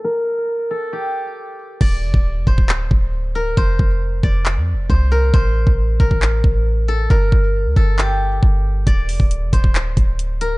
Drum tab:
CC |----------------|x---------------|----------------|----------------|
HH |----------------|----------------|----------------|----------------|
CP |----------------|--------x-------|--------x-------|--------x-------|
BD |----------------|o--o--oo--o-----|o-o---o-----o---|o--o--oo--o-----|

CC |----------------|----------------|
HH |----------------|x-o-x-x-x-x-x-x-|
CP |--------x-------|--------x-------|
BD |o-o---o-----o---|o--o--oo--o-----|